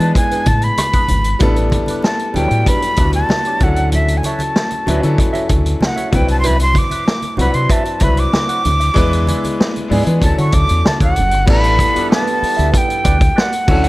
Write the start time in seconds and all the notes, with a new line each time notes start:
Already playing: G#3 B4 A5
0.00 E3 B3 D4 E4 B4, closed hi-hat
0.15 G#5, muted clean electric guitar stroke, kick, closed hi-hat
0.31 D4 G#4 B4, closed hi-hat, muted conga
0.46 A2 A5, kick, closed hi-hat, high conga
0.62 B5, muted clean electric guitar stroke, closed hi-hat
0.78 muted clean electric guitar stroke, cross-stick, closed hi-hat, muted conga, high conga
0.93 D4 G#4 B4, kick, closed hi-hat
1.08 G#1, muted clean electric guitar stroke, closed hi-hat, high conga, low conga
1.24 muted clean electric guitar stroke, closed hi-hat
1.39 A1 G3 B3 D4 E4 G4 A4 B4, kick, closed hi-hat, muted conga, low conga
1.56 muted clean electric guitar stroke, closed hi-hat, muted conga
1.70 muted clean electric guitar stroke, kick, closed hi-hat, high conga
1.86 B4, closed hi-hat, high conga
1.90 D4 G4
2.02 A5, snare, muted conga
2.19 closed hi-hat
2.33 D2 G3 B3 D4 E4 G4 G5, closed hi-hat, low conga
2.37 F#3 C#5
2.51 A2, closed hi-hat
2.66 D4 G4 B4 B5, kick, closed hi-hat
2.82 closed hi-hat
2.96 D2 G3 B3 D4 E4 G4, kick, closed hi-hat, high conga
3.01 F#4 B4
3.13 A5, closed hi-hat
3.29 snare, high conga
3.45 D4 G4 C#5, closed hi-hat
3.60 D2 F#3 C#4 D4 E4 A4 F#5, muted clean electric guitar stroke, kick, closed hi-hat, high conga, low conga
3.76 muted clean electric guitar stroke, closed hi-hat
3.92 E5, closed hi-hat, muted conga, low conga
4.08 closed hi-hat, muted conga
4.17 G#5
4.23 F#4 C#5 E5 A5, closed hi-hat, high conga
4.39 closed hi-hat, high conga
4.56 muted clean electric guitar stroke, snare, muted conga
4.71 muted clean electric guitar stroke, closed hi-hat, muted conga
4.86 D2 F#3 C#4 D4 E4 F#4 B4 C#5 E5, closed hi-hat, low conga
5.01 D3 F#3 C#4 D4 E4 A4, muted clean electric guitar stroke, closed hi-hat
5.18 muted clean electric guitar stroke, kick, closed hi-hat
5.33 F#4 C#5 E5, closed hi-hat, muted conga
5.49 D2, kick, closed hi-hat, high conga
5.65 muted clean electric guitar stroke, closed hi-hat
5.80 muted clean electric guitar stroke, snare, muted conga, high conga
5.85 F#5
5.96 F#4 C#5 E5, closed hi-hat, muted conga
6.11 C2 F#3 C4 D4 E4 B4, kick, closed hi-hat, high conga, low conga
6.16 G5
6.27 A5, muted clean electric guitar stroke, closed hi-hat
6.40 F#4 C6, closed hi-hat
6.44 B4 E5 B5, muted conga, low conga
6.60 C6, muted clean electric guitar stroke, closed hi-hat, muted conga
6.74 muted clean electric guitar stroke, kick, closed hi-hat, high conga
6.78 D6
6.90 F#4 B4 E5, closed hi-hat, high conga
7.07 snare, muted conga
7.22 closed hi-hat, muted conga
7.37 C2 F#3 C4 D4 E4 F#4 B4 F#5 B5, closed hi-hat, low conga
7.53 C3 C6, muted clean electric guitar stroke, closed hi-hat
7.69 F#4 B4 E5 A5, kick, closed hi-hat
7.85 muted clean electric guitar stroke, closed hi-hat
8.00 C2 F#3 C4 D4 E4 F#4 B4 E5 B5, kick, closed hi-hat, high conga
8.04 B4
8.17 D6, muted clean electric guitar stroke, closed hi-hat
8.33 muted clean electric guitar stroke, snare, high conga
8.48 F#4 B4 F#5, closed hi-hat
8.65 D2, closed hi-hat, high conga, low conga
8.80 muted clean electric guitar stroke, closed hi-hat
8.94 E2 G#3 B3 D4 E4 B4, kick, closed hi-hat, low conga
9.12 closed hi-hat, muted conga
9.27 E4 G#4 D5, closed hi-hat, high conga
9.44 closed hi-hat, high conga
9.58 muted clean electric guitar stroke, snare, muted conga
9.74 muted clean electric guitar stroke, closed hi-hat, muted conga
9.88 G#2 G#3 B3 D4 E4 G#4 D5, open hi-hat, low conga
10.04 E3 G#3 B3 D4 E4 B4, muted clean electric guitar stroke, closed hi-hat
10.20 D2 F#3 C#4 D4 E4 A4 A5, muted clean electric guitar stroke, kick, closed hi-hat, muted conga
10.38 D3 E4 F#4 C#5 C#6, closed hi-hat, muted conga
10.52 D2 D6, kick, closed hi-hat, high conga
10.69 E2, muted clean electric guitar stroke, closed hi-hat
10.85 A5, snare, muted conga, high conga
11.00 D2 E4 F#4 C#5 F#5, kick, closed hi-hat
11.16 F#1, closed hi-hat, high conga, low conga
11.31 G1, muted clean electric guitar stroke, closed hi-hat
11.46 A1 G2 E3 G3 B3 D4 E4 G4 B4 D5, kick, crash
11.50 A4 B5
11.64 closed hi-hat
11.79 kick, closed hi-hat
11.94 G3 B3 D4 E4 G4 B4 E5, muted fingered electric bass stroke, closed hi-hat
11.98 A4
12.10 G4 B4 E5 A5, snare
12.27 closed hi-hat
12.41 muted clean electric guitar stroke, muted fingered electric bass stroke, open hi-hat
12.57 D2 G4 B4 E5, closed hi-hat
12.74 G5, kick, closed hi-hat
12.88 muted clean electric guitar stroke, closed hi-hat
13.04 D2 G4 B4 D5, kick, closed hi-hat
13.21 kick, closed hi-hat
13.36 G4 B4 D5, snare
13.40 F#5
13.53 closed hi-hat
13.67 D2 A2 F#3 C#4 D4 E4 A4, muted clean electric guitar stroke, kick, crash
13.84 F#4 C#5 F#5, closed hi-hat